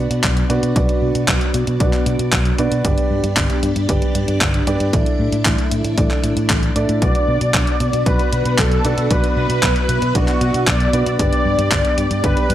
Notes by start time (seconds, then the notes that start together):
Already playing: B3 D4 F#4 B4 D5
0.11 B2, closed hi-hat
0.24 B1, kick, clap, closed hi-hat
0.37 closed hi-hat
0.50 B2 D4 F#4 B4 D5, closed hi-hat
0.63 B2, closed hi-hat
0.76 B1 D4 F#4 B4 D5, kick, closed hi-hat
0.89 closed hi-hat
1.02 B2
1.15 B2, closed hi-hat
1.28 B1, kick, clap, closed hi-hat
1.41 closed hi-hat
1.54 B2, closed hi-hat
1.67 B2, closed hi-hat
1.80 B1 D4 F#4 B4 D5, kick, closed hi-hat
1.93 clap, closed hi-hat
2.06 B2, closed hi-hat
2.19 B2, closed hi-hat
2.32 B1, kick, clap, closed hi-hat
2.45 closed hi-hat
2.58 B2 D4 F#4 B4 D5, closed hi-hat
2.72 B2, closed hi-hat
2.85 G1 D4 G4 B4 D5, kick, closed hi-hat
2.98 closed hi-hat
3.11 G2
3.24 G2, closed hi-hat
3.37 G1, kick, clap, closed hi-hat
3.50 closed hi-hat
3.63 G2, closed hi-hat
3.76 G2, closed hi-hat
3.89 G1 D4 G4 B4 D5, kick, closed hi-hat
4.02 closed hi-hat
4.15 G2, closed hi-hat
4.28 G2, closed hi-hat
4.41 G1, kick, clap, closed hi-hat
4.54 closed hi-hat
4.67 G2 D4 G4 B4 D5, closed hi-hat
4.80 G2, closed hi-hat
4.93 A1 A3 D4 E4 A4 D5, kick, closed hi-hat
5.06 closed hi-hat
5.19 A2
5.32 A2, closed hi-hat
5.45 A1, kick, clap, closed hi-hat
5.58 closed hi-hat
5.71 A2, closed hi-hat
5.84 A2, closed hi-hat
5.98 A1 D4 E4 A4 D5, kick, closed hi-hat
6.11 clap, closed hi-hat
6.24 A2, closed hi-hat
6.37 A2, closed hi-hat
6.50 A1, kick, clap, closed hi-hat
6.63 closed hi-hat
6.76 A2 D4 E4 A4 D5, closed hi-hat
6.89 A2, closed hi-hat
7.02 B1 B3 D4 F#4 B4 D5, kick, closed hi-hat
7.15 closed hi-hat
7.28 B2
7.41 B2, closed hi-hat
7.54 B1, kick, clap, closed hi-hat
7.67 closed hi-hat
7.80 B2, closed hi-hat
7.93 B2, closed hi-hat
8.06 B1 D4 F#4 B4 D5, kick, closed hi-hat
8.19 closed hi-hat
8.32 B2, closed hi-hat
8.45 B2, closed hi-hat
8.58 B1 A4, kick, clap, closed hi-hat
8.72 closed hi-hat
8.84 B2 D4 F#4 B4 D5, closed hi-hat
8.98 B2, closed hi-hat
9.11 B1 D4 F#4 B4 D5 E5, kick, closed hi-hat
9.24 closed hi-hat
9.37 B2 B4
9.50 B2, closed hi-hat
9.63 B1, kick, clap, closed hi-hat
9.76 closed hi-hat
9.89 B2, closed hi-hat
10.02 B2, closed hi-hat
10.15 B1 D4 F#4 B4 D5, kick, closed hi-hat
10.28 clap, closed hi-hat
10.41 B2, closed hi-hat
10.54 B2, closed hi-hat
10.67 B1 D5, kick, clap, closed hi-hat
10.80 closed hi-hat
10.93 B2 D4 F#4 B4 D5, closed hi-hat
11.06 B2, closed hi-hat
11.19 G1 D4 G4 B4 D5, kick, closed hi-hat
11.33 closed hi-hat
11.45 G2
11.59 G2, closed hi-hat
11.72 G1, kick, clap, closed hi-hat
11.85 closed hi-hat
11.98 G2, closed hi-hat
12.11 G2, closed hi-hat
12.24 G1 D4 G4 B4 D5, kick, closed hi-hat
12.37 closed hi-hat
12.50 G2, closed hi-hat